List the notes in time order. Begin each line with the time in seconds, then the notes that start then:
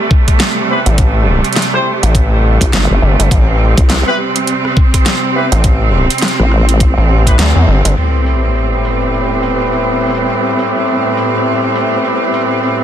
Already playing: C3 G3 A3
0.11 kick
0.28 kick, cross-stick, closed hi-hat
0.40 snare, closed hi-hat
0.69 B3 C4 E4 G4 B4
0.86 A1, closed hi-hat
0.98 kick, closed hi-hat
1.44 closed hi-hat
1.53 snare, closed hi-hat
1.56 closed hi-hat
1.62 closed hi-hat
1.74 C4 E4 G4 C5, cross-stick
2.03 A1, closed hi-hat
2.15 kick, closed hi-hat
2.61 C2, kick, closed hi-hat
2.73 G1, snare, closed hi-hat
2.90 G1
3.02 G1
3.19 G1, cross-stick, closed hi-hat
3.31 A1 C4, kick, closed hi-hat
3.77 C2, kick, closed hi-hat
3.90 snare, closed hi-hat
4.07 B3 C4 E4 G4 B4
4.36 closed hi-hat
4.47 closed hi-hat
4.65 cross-stick
4.77 kick
4.94 kick, cross-stick, closed hi-hat
5.06 snare, closed hi-hat
5.35 B3 C4 E4 G4 B4
5.52 A1, closed hi-hat
5.64 kick, closed hi-hat
6.10 closed hi-hat
6.18 closed hi-hat
6.22 snare, closed hi-hat
6.28 closed hi-hat
6.39 A1, cross-stick
6.52 cross-stick
6.69 closed hi-hat
6.80 kick, closed hi-hat
6.98 A1
7.27 B3 C4 E4 G4 B4, kick, closed hi-hat
7.39 D2, snare, closed hi-hat
7.56 E2
7.68 G1
7.85 G1, cross-stick, closed hi-hat
7.97 A2 G3 B3 C4 E4 G4 B4, open hi-hat, crash, sub drop
8.14 open hi-hat
8.26 open hi-hat
8.44 open hi-hat
8.55 open hi-hat
8.73 open hi-hat
8.85 open hi-hat
9.02 open hi-hat
9.14 open hi-hat
9.31 open hi-hat
9.43 open hi-hat
9.60 open hi-hat
9.72 open hi-hat
9.89 open hi-hat
10.01 open hi-hat
10.04 open hi-hat
10.07 open hi-hat
10.10 open hi-hat
10.15 open hi-hat
10.18 open hi-hat
10.30 open hi-hat
10.47 open hi-hat
10.59 open hi-hat
10.76 open hi-hat
10.88 open hi-hat
11.05 open hi-hat
11.07 open hi-hat
11.12 open hi-hat
11.14 open hi-hat
11.16 open hi-hat
11.17 open hi-hat
11.35 open hi-hat
11.55 open hi-hat
11.64 open hi-hat
11.75 open hi-hat
11.93 open hi-hat
12.05 open hi-hat
12.22 open hi-hat
12.34 open hi-hat
12.51 open hi-hat
12.63 A2 B3 C4 E4 G4 B4, open hi-hat
12.80 open hi-hat